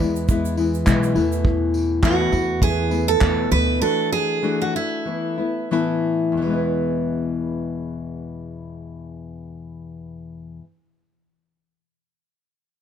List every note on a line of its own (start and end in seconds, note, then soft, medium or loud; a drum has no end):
0.00 0.83 E2 loud
0.00 0.27 E3 soft
0.00 0.28 G#3 soft
0.00 0.29 B3 medium
0.00 0.29 E4 medium
0.00 tambourine medium
0.16 shaker medium
0.28 0.57 E3 medium
0.28 0.57 G#3 medium
0.28 0.57 B3 medium
0.28 0.56 E4 medium
0.28 kick loud
0.28 shaker medium
0.45 shaker medium
0.57 0.85 E3 medium
0.57 0.86 G#3 medium
0.57 0.86 B3 medium
0.57 0.86 E4 medium
0.57 tambourine medium
0.74 shaker soft
0.86 1.13 B1 medium
0.86 1.15 E2 medium
0.86 1.15 B2 loud
0.86 1.15 E3 medium
0.86 1.15 G#3 loud
0.86 1.14 B3 loud
0.86 1.14 E4 loud
0.86 kick loud
0.86 clap loud
0.86 shaker medium
1.03 shaker medium
1.15 2.28 E2 loud
1.15 2.01 E2 medium
1.15 2.01 B2 medium
1.15 2.02 E3 medium
1.15 2.03 A3 medium
1.15 2.02 B3 medium
1.15 2.02 E4 medium
1.15 tambourine medium
1.32 shaker medium
1.45 kick loud
1.74 tambourine medium
2.02 2.32 E2 medium
2.02 2.32 B2 medium
2.02 2.32 E3 medium
2.02 2.32 A3 medium
2.02 2.31 B3 loud
2.02 2.30 E4 loud
2.02 2.62 F#4 medium
2.02 kick loud
2.02 clap loud
2.32 3.17 E2 loud
2.32 2.60 E3 soft
2.32 2.61 A3 soft
2.32 2.62 B3 medium
2.32 2.61 E4 medium
2.32 tambourine medium
2.61 2.91 E3 medium
2.61 2.91 A3 medium
2.61 2.90 B3 medium
2.61 2.89 E4 medium
2.61 3.05 G#4 loud
2.61 kick loud
2.91 3.20 E3 soft
2.91 3.20 A3 medium
2.91 3.21 B3 medium
2.91 3.21 E4 medium
2.91 tambourine medium
3.08 3.51 A4 loud
3.21 3.81 E2 medium
3.21 3.49 E2 medium
3.21 3.81 B2 medium
3.21 3.80 E3 medium
3.21 3.81 A3 medium
3.21 3.82 B3 medium
3.21 3.82 E4 medium
3.21 kick loud
3.21 clap loud
3.51 3.79 D2 loud
3.51 3.80 B4 loud
3.51 tambourine medium
3.81 4.42 E3 medium
3.81 4.42 A3 medium
3.81 4.42 D4 medium
3.81 4.43 F#4 medium
3.81 4.12 A4 loud
4.12 4.62 G#4 loud
4.43 4.74 E3 medium
4.43 4.75 A3 medium
4.43 4.74 D4 medium
4.43 4.72 F#4 loud
4.62 4.74 F#4 medium
4.74 5.05 A3 soft
4.74 5.06 D4 soft
4.74 5.68 E4 medium
4.74 5.06 F#4 medium
5.05 5.38 E3 medium
5.05 5.39 A3 medium
5.05 5.38 B3 medium
5.05 5.36 E4 medium
5.38 5.70 A3 soft
5.38 5.71 B3 medium
5.38 5.71 E4 medium
5.71 6.37 A2 medium
5.71 6.41 E3 loud
5.71 6.39 A3 loud
5.71 6.49 B3 medium
5.71 6.53 E4 loud
6.32 10.59 E2 medium
6.37 10.61 B2 medium
6.42 10.64 E3 medium
6.46 10.66 G#3 medium
6.46 10.68 B3 medium
6.54 10.70 E4 medium